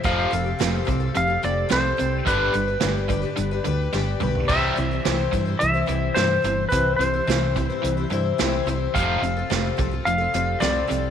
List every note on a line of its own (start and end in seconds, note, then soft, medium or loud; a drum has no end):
0.03 0.25 F1 medium
0.03 0.31 F2 medium
0.03 0.31 C3 medium
0.03 0.32 F3 medium
0.03 0.31 F3 medium
0.03 0.30 G3 medium
0.03 0.31 C4 medium
0.03 0.32 G4 medium
0.03 0.33 A4 medium
0.03 1.16 F5 medium
0.03 kick loud
0.03 closed hi-hat medium
0.31 0.53 F1 medium
0.31 0.58 F2 medium
0.31 0.58 C3 medium
0.31 0.46 G3 medium
0.31 0.46 C4 medium
0.31 0.45 G4 medium
0.31 0.43 A4 medium
0.31 closed hi-hat medium
0.44 0.58 C4 soft
0.44 0.58 G4 soft
0.44 0.59 A4 soft
0.59 0.81 F1 medium
0.59 0.85 F2 medium
0.59 0.86 C3 medium
0.59 0.87 F3 medium
0.59 0.84 G3 medium
0.59 0.85 C4 medium
0.59 0.86 G4 medium
0.59 0.87 A4 medium
0.59 snare loud
0.59 closed hi-hat medium
0.85 1.08 C2 medium
0.85 1.13 F2 medium
0.85 1.13 C3 medium
0.85 1.00 G3 medium
0.85 1.01 C4 medium
0.85 1.00 G4 medium
0.85 0.99 A4 medium
0.85 kick medium
0.85 closed hi-hat soft
1.00 1.29 C4 soft
1.00 1.29 G4 soft
1.00 1.26 A4 soft
1.15 1.37 F1 medium
1.15 1.40 F2 medium
1.15 1.41 C3 medium
1.15 1.42 F5 medium
1.15 closed hi-hat medium
1.27 1.42 C4 soft
1.27 1.43 G4 soft
1.27 1.43 A4 soft
1.43 1.64 F1 medium
1.43 1.69 F2 medium
1.43 1.69 C3 medium
1.43 1.68 G3 medium
1.43 1.69 C4 medium
1.43 1.69 G4 medium
1.43 1.70 A4 medium
1.43 1.70 D5 medium
1.43 closed hi-hat medium
1.69 1.92 C2 medium
1.69 1.96 F2 medium
1.69 1.96 C3 medium
1.69 1.98 F3 medium
1.69 1.96 G3 medium
1.69 1.98 C4 medium
1.69 1.98 G4 medium
1.69 1.99 A4 medium
1.69 2.24 C5 medium
1.69 snare medium
1.69 closed hi-hat medium
1.97 2.21 C2 medium
1.97 2.24 F2 medium
1.97 2.24 C3 medium
1.97 2.26 G3 medium
1.97 2.27 C4 medium
1.97 2.26 G4 medium
1.97 2.28 A4 medium
1.97 closed hi-hat medium
2.26 2.47 G1 medium
2.26 2.53 G2 medium
2.26 2.53 D3 loud
2.26 2.52 G3 medium
2.26 2.54 G3 medium
2.26 2.54 D4 medium
2.26 2.55 G4 medium
2.26 3.90 B4 medium
2.26 2.55 B4 medium
2.26 kick loud
2.26 closed hi-hat medium
2.53 2.75 G1 medium
2.53 2.79 G2 medium
2.53 2.80 D3 medium
2.53 2.68 G3 medium
2.53 2.69 D4 medium
2.53 2.68 G4 medium
2.53 2.66 B4 medium
2.53 closed hi-hat medium
2.68 2.81 D4 soft
2.68 2.81 G4 soft
2.68 2.82 B4 soft
2.80 3.24 G1 medium
2.80 3.07 G2 medium
2.80 3.07 D3 medium
2.80 3.08 G3 medium
2.80 3.08 D4 medium
2.80 3.09 G4 medium
2.80 3.10 B4 medium
2.80 snare loud
2.80 closed hi-hat medium
3.09 3.35 G2 medium
3.09 3.35 D3 medium
3.09 3.24 G3 medium
3.09 3.24 D4 medium
3.09 3.22 G4 medium
3.09 3.20 B4 medium
3.09 kick medium
3.09 closed hi-hat medium
3.22 3.52 D4 soft
3.22 3.52 G4 medium
3.22 3.50 B4 medium
3.36 3.59 G1 medium
3.36 3.63 G2 medium
3.36 3.63 D3 medium
3.36 closed hi-hat medium
3.51 3.64 D4 soft
3.51 3.66 G4 medium
3.51 3.66 B4 medium
3.64 3.87 D2 medium
3.64 3.90 G2 medium
3.64 3.91 D3 medium
3.64 3.92 G3 medium
3.64 3.93 D4 medium
3.64 3.93 G4 medium
3.64 3.94 B4 medium
3.64 closed hi-hat medium
3.93 4.14 G1 medium
3.93 4.19 G2 medium
3.93 4.19 D3 medium
3.93 4.19 G3 medium
3.93 4.19 D4 medium
3.93 4.21 G4 medium
3.93 4.22 B4 medium
3.93 snare soft
4.20 4.49 B1 medium
4.20 4.46 G2 medium
4.20 4.46 D3 medium
4.20 4.48 G3 medium
4.20 4.49 D4 medium
4.20 4.49 G4 medium
4.20 4.50 B4 medium
4.20 mid tom medium
4.35 floor tom medium
4.48 4.70 C2 medium
4.48 4.75 C3 medium
4.48 4.77 C3 medium
4.48 4.77 E3 medium
4.48 4.76 E3 medium
4.48 4.75 G3 medium
4.48 4.76 G3 medium
4.48 4.77 C4 medium
4.48 4.77 E4 medium
4.48 4.78 C5 medium
4.48 5.28 E5 medium
4.48 kick loud
4.48 crash medium
4.76 4.98 C2 medium
4.76 5.02 C3 medium
4.76 5.02 E3 medium
4.76 4.91 G3 medium
4.76 4.92 C4 medium
4.76 4.91 E4 medium
4.76 4.90 C5 medium
4.76 closed hi-hat medium
4.91 5.05 G3 soft
4.91 5.06 C4 soft
4.91 5.06 E4 soft
4.91 5.05 C5 soft
5.05 5.26 C2 medium
5.05 5.31 C3 medium
5.05 5.33 C3 medium
5.05 5.34 E3 medium
5.05 5.31 E3 medium
5.05 5.32 G3 medium
5.05 5.33 C4 medium
5.05 5.34 E4 medium
5.05 5.34 C5 medium
5.05 snare loud
5.05 closed hi-hat medium
5.32 5.54 G2 medium
5.32 5.58 C3 medium
5.32 5.58 E3 medium
5.32 5.47 G3 medium
5.32 5.47 C4 medium
5.32 5.46 E4 medium
5.32 5.44 C5 medium
5.32 kick medium
5.32 closed hi-hat medium
5.46 5.75 G3 soft
5.46 5.75 C4 soft
5.46 5.74 E4 soft
5.46 5.73 C5 soft
5.59 5.82 C2 medium
5.59 5.86 C3 medium
5.59 5.86 E3 medium
5.59 6.18 E5 medium
5.59 closed hi-hat medium
5.74 5.85 G3 soft
5.74 5.86 C4 soft
5.74 5.87 E4 soft
5.74 5.88 C5 medium
5.86 6.09 C2 medium
5.86 6.13 C3 medium
5.86 6.14 E3 medium
5.86 6.15 G3 medium
5.86 6.16 C4 medium
5.86 6.16 E4 medium
5.86 6.16 C5 medium
5.86 closed hi-hat medium
6.14 6.37 G2 medium
6.14 6.41 C3 medium
6.14 6.44 C3 medium
6.14 6.41 E3 medium
6.14 6.44 E3 medium
6.14 6.41 G3 medium
6.14 6.42 C4 medium
6.14 6.42 E4 medium
6.14 6.67 C5 medium
6.14 6.44 C5 medium
6.14 snare medium
6.14 closed hi-hat medium
6.42 6.64 G1 medium
6.42 6.70 C3 medium
6.42 6.70 E3 medium
6.42 6.70 G3 medium
6.42 6.71 C4 medium
6.42 6.71 E4 medium
6.42 6.71 C5 medium
6.42 closed hi-hat medium
6.69 6.99 C3 medium
6.69 6.97 C3 medium
6.69 6.99 E3 medium
6.69 6.97 E3 medium
6.69 6.98 G3 medium
6.69 6.99 C4 medium
6.69 6.99 E4 medium
6.69 6.96 B4 medium
6.69 7.00 C5 medium
6.69 kick medium
6.69 closed hi-hat medium
6.73 6.93 C2 medium
6.97 7.20 C2 medium
6.97 7.25 C3 medium
6.97 7.25 E3 medium
6.97 7.13 G3 medium
6.97 7.14 C4 medium
6.97 7.13 E4 medium
6.97 7.69 C5 medium
7.01 7.12 C5 medium
7.01 closed hi-hat medium
7.13 7.27 G3 soft
7.13 7.27 C4 soft
7.13 7.28 E4 soft
7.13 7.28 C5 soft
7.27 7.68 C2 medium
7.27 7.55 C3 medium
7.27 7.53 C3 medium
7.27 7.56 E3 medium
7.27 7.53 E3 medium
7.27 7.53 G3 medium
7.27 7.54 C4 medium
7.27 7.55 E4 medium
7.27 7.56 C5 medium
7.27 snare loud
7.27 closed hi-hat medium
7.55 7.81 C3 medium
7.55 7.81 E3 medium
7.55 7.69 G3 soft
7.55 7.70 C4 medium
7.55 7.69 E4 medium
7.55 7.68 C5 medium
7.55 kick medium
7.55 closed hi-hat medium
7.69 7.98 G3 soft
7.69 7.98 C4 soft
7.69 7.96 E4 medium
7.69 8.06 B4 medium
7.69 7.96 C5 medium
7.83 8.04 C2 medium
7.83 8.09 C3 medium
7.83 8.08 E3 medium
7.83 closed hi-hat medium
7.97 8.09 G3 soft
7.97 8.10 C4 soft
7.97 8.11 E4 medium
7.97 8.11 C5 medium
8.10 8.31 G2 medium
8.10 8.36 C3 medium
8.10 8.36 E3 medium
8.10 8.38 G3 medium
8.10 8.39 C4 medium
8.10 8.39 E4 medium
8.10 8.39 C5 medium
8.10 closed hi-hat medium
8.38 8.60 C2 medium
8.38 8.67 C3 medium
8.38 8.64 C3 medium
8.38 8.67 E3 medium
8.38 8.65 E3 medium
8.38 8.65 G3 medium
8.38 8.66 C4 medium
8.38 8.67 E4 medium
8.38 8.67 C5 medium
8.38 snare medium
8.38 closed hi-hat medium
8.66 8.87 C2 medium
8.66 8.92 C3 medium
8.66 8.92 E3 medium
8.66 8.94 G3 medium
8.66 8.94 C4 medium
8.66 8.96 E4 medium
8.66 8.96 C5 medium
8.66 closed hi-hat medium
8.94 9.16 F1 medium
8.94 9.21 F2 medium
8.94 9.21 C3 medium
8.94 9.21 F3 medium
8.94 9.23 F3 medium
8.94 9.22 G3 medium
8.94 9.23 C4 medium
8.94 9.23 F4 medium
8.94 9.23 A4 medium
8.94 9.74 F5 medium
8.94 kick medium
8.94 closed hi-hat medium
9.22 9.42 F1 medium
9.22 9.48 F2 medium
9.22 9.47 C3 medium
9.22 9.37 G3 medium
9.22 9.37 C4 medium
9.22 9.37 F4 medium
9.22 9.35 A4 medium
9.22 closed hi-hat medium
9.37 9.50 C4 soft
9.37 9.51 F4 soft
9.37 9.50 A4 soft
9.50 9.71 F1 medium
9.50 9.75 F2 medium
9.50 9.76 C3 medium
9.50 9.78 F3 medium
9.50 9.76 G3 medium
9.50 9.77 C4 medium
9.50 9.78 F4 medium
9.50 9.78 A4 medium
9.50 snare loud
9.50 closed hi-hat medium
9.77 9.99 C2 medium
9.77 10.03 F2 medium
9.77 10.04 C3 medium
9.77 9.91 G3 medium
9.77 9.92 C4 medium
9.77 9.92 F4 medium
9.77 9.90 A4 medium
9.77 kick medium
9.77 closed hi-hat medium
9.91 10.20 C4 soft
9.91 10.19 F4 soft
9.91 10.17 A4 soft
10.05 10.26 F1 medium
10.05 10.31 F2 medium
10.05 10.31 C3 medium
10.05 10.63 F5 loud
10.05 closed hi-hat medium
10.18 10.33 C4 soft
10.18 10.33 F4 soft
10.18 10.33 A4 medium
10.34 10.54 F1 medium
10.34 10.59 F2 medium
10.34 10.59 C3 medium
10.34 10.60 G3 medium
10.34 10.61 C4 medium
10.34 10.61 F4 medium
10.34 10.61 A4 medium
10.34 closed hi-hat medium
10.60 10.82 C2 medium
10.60 10.86 F2 medium
10.60 10.86 C3 medium
10.60 10.89 F3 medium
10.60 10.86 G3 medium
10.60 10.87 C4 medium
10.60 10.88 F4 medium
10.60 10.89 A4 medium
10.60 11.10 D5 medium
10.60 snare medium
10.60 closed hi-hat medium
10.87 11.10 C2 medium
10.87 11.10 F2 medium
10.87 11.10 C3 medium
10.87 11.10 G3 medium
10.87 11.10 C4 medium
10.87 11.10 F4 medium
10.87 11.10 A4 medium
10.87 closed hi-hat medium